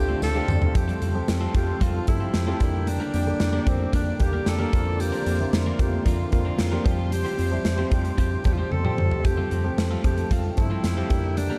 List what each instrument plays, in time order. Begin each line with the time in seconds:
Already playing: analog synth bass D2, grand piano D3 A3 C4 F4 G4, alto saxophone G4, analog synth pad A4 D5 F5 C6
0.09 clean electric guitar A3 C4 F4 A4
0.22 analog synth bass D2, alto saxophone A4, snare, tambourine
0.35 grand piano D3 A3 C4 G4, clean electric guitar A3 C4 F4 A4
0.48 analog synth bass E2, mid tom, tambourine
0.61 muted clean electric guitar stroke, floor tom
0.74 analog synth bass F2, grand piano F3 A3 C4 G4, alto saxophone G4, analog synth pad A4 G5 A5 C6, muted clean electric guitar stroke, kick, closed hi-hat
0.88 clean electric guitar G3 C4 F4 A4, closed hi-hat
1.01 analog synth bass F2, clean electric guitar G3 C4 F4 A4, closed hi-hat
1.14 grand piano F3 A3 C4 G4, muted clean electric guitar stroke
1.28 analog synth bass F2, muted clean electric guitar stroke, snare, closed hi-hat
1.41 clean electric guitar G3 C4 F4 A4
1.54 analog synth bass F2, grand piano F3 A3 C4 F4, alto saxophone G4, muted clean electric guitar stroke, kick, closed hi-hat
1.67 muted clean electric guitar stroke
1.81 analog synth bass F2, clean electric guitar G3 C4 F4 A4, alto saxophone F4, kick, closed hi-hat
1.94 muted clean electric guitar stroke
2.07 analog synth bass G2, grand piano F3 A3 C4 G4, alto saxophone E4, muted clean electric guitar stroke, kick, closed hi-hat
2.20 clean electric guitar G3 C4 F4 A4
2.34 analog synth bass F2, snare, closed hi-hat
2.47 grand piano F3 A3 C4 G4, clean electric guitar G3 C4 F4 A4
2.60 analog synth bass F2, grand piano D3 G3 A#3 G4, analog synth pad A#3 D5 D6, kick, closed hi-hat
2.74 muted clean electric guitar stroke
2.87 alto saxophone D4, muted clean electric guitar stroke, closed hi-hat
3.00 clean electric guitar A#3 D4 G4 A#4
3.14 analog synth bass F2, clean electric guitar A#3 D4 G4 A#4, closed hi-hat
3.26 grand piano D3 G3 A#3 G4, muted clean electric guitar stroke
3.40 analog synth bass F2, muted clean electric guitar stroke, snare, closed hi-hat
3.53 clean electric guitar A#3 D4 G4 A#4
3.66 analog synth bass F2, grand piano D3 G3 A#3 G4, alto saxophone C4, muted clean electric guitar stroke, kick, closed hi-hat
3.79 muted clean electric guitar stroke
3.93 analog synth bass F2, clean electric guitar A#3 D4 G4 A#4, alto saxophone D4, kick, closed hi-hat
4.07 muted clean electric guitar stroke
4.19 analog synth bass E2, grand piano D3 G3 A#3 G4, alto saxophone G4, muted clean electric guitar stroke, kick, closed hi-hat
4.33 clean electric guitar A#3 D4 G4 A#4
4.46 analog synth bass F2, alto saxophone A4, muted clean electric guitar stroke, snare, closed hi-hat
4.58 grand piano D3 G3 A#3 A#4, clean electric guitar A#3 D4 G4 A#4
4.72 analog synth bass F2, grand piano D3 A#3 C4 F4, analog synth pad C6, muted clean electric guitar stroke, kick, closed hi-hat
4.85 muted clean electric guitar stroke
4.99 alto saxophone G4, muted clean electric guitar stroke, closed hi-hat
5.12 clean electric guitar F3 C4 D4 A#4, closed hi-hat
5.26 analog synth bass F2, clean electric guitar F3 C4 D4 A#4, closed hi-hat
5.38 grand piano D3 A#3 C4 E4, muted clean electric guitar stroke
5.52 analog synth bass F2, muted clean electric guitar stroke, snare, closed hi-hat
5.66 clean electric guitar F3 C4 D4 A#4
5.79 analog synth bass F2, grand piano D3 A#3 C4 F4, alto saxophone G4, kick, closed hi-hat
5.93 muted clean electric guitar stroke
6.06 analog synth bass F2, clean electric guitar F3 C4 D4 A#4, alto saxophone F4, kick, closed hi-hat
6.19 muted clean electric guitar stroke
6.31 analog synth bass F2, grand piano D3 A#3 C4 F4, alto saxophone F4, muted clean electric guitar stroke, kick, closed hi-hat
6.45 clean electric guitar F3 C4 D4 A#4
6.58 analog synth bass F2, muted clean electric guitar stroke, snare, closed hi-hat
6.71 grand piano D3 A#3 C4 G4, clean electric guitar F3 C4 D4 A#4
6.84 analog synth bass F2, grand piano F3 G3 C4 G4, analog synth pad G4 C5, kick, closed hi-hat
6.98 muted clean electric guitar stroke
7.11 alto saxophone G4, muted clean electric guitar stroke, closed hi-hat
7.25 clean electric guitar C4 F4 G4 C5, closed hi-hat
7.38 analog synth bass F2, clean electric guitar C4 F4 G4 C5, closed hi-hat
7.51 grand piano F3 G3 C4 E4, muted clean electric guitar stroke
7.65 analog synth bass F2, muted clean electric guitar stroke, snare, closed hi-hat
7.78 clean electric guitar C4 F4 G4 C5
7.91 analog synth bass F2, grand piano F3 G3 C4 G4, alto saxophone G4, muted clean electric guitar stroke, kick, closed hi-hat
8.04 muted clean electric guitar stroke, closed hi-hat
8.18 analog synth bass F2, clean electric guitar C4 F4 G4 C5, alto saxophone G4, kick, closed hi-hat
8.31 muted clean electric guitar stroke
8.44 analog synth bass E2, grand piano F3 G3 C4 G4, alto saxophone G4, muted clean electric guitar stroke, kick, closed hi-hat
8.53 alto saxophone F4
8.58 clean electric guitar C4 F4 G4 C5, alto saxophone G4
8.71 analog synth bass F2, alto saxophone A4, muted clean electric guitar stroke, high tom
8.84 grand piano F3 G3 C4 G4, clean electric guitar C4 F4 G4 C5, mid tom
8.98 analog synth bass F2, muted clean electric guitar stroke, mid tom
9.11 muted clean electric guitar stroke, floor tom
9.24 analog synth bass F2, grand piano F3 A3 C4 G4, alto saxophone G4, analog synth pad A4 G5, muted clean electric guitar stroke, kick, closed hi-hat
9.37 clean electric guitar G3 C4 F4 A4
9.51 analog synth bass F2, clean electric guitar G3 C4 F4 A4, closed hi-hat
9.64 grand piano F3 A3 C4 G4, muted clean electric guitar stroke
9.77 analog synth bass F2, muted clean electric guitar stroke, snare, closed hi-hat
9.91 clean electric guitar G3 C4 F4 A4
10.04 analog synth bass F2, grand piano F3 A3 C4 A4, alto saxophone G4, muted clean electric guitar stroke, kick, closed hi-hat
10.18 muted clean electric guitar stroke, closed hi-hat
10.31 analog synth bass F2, clean electric guitar G3 C4 F4 A4, alto saxophone F4, kick, closed hi-hat
10.44 muted clean electric guitar stroke
10.51 alto saxophone F4
10.57 analog synth bass G2, grand piano F3 A3 C4 A4, alto saxophone E4, muted clean electric guitar stroke, kick, closed hi-hat
10.70 clean electric guitar G3 C4 F4 A4
10.84 analog synth bass F2, snare, closed hi-hat
10.97 grand piano F3 A3 C4 G4, clean electric guitar G3 C4 F4 A4
11.10 analog synth bass F2, grand piano D3 G3 A#3 G4, analog synth pad A#3 D5 D6, muted clean electric guitar stroke, kick, closed hi-hat
11.24 muted clean electric guitar stroke
11.37 alto saxophone D4, muted clean electric guitar stroke, closed hi-hat
11.50 clean electric guitar A#3 D4 G4 A#4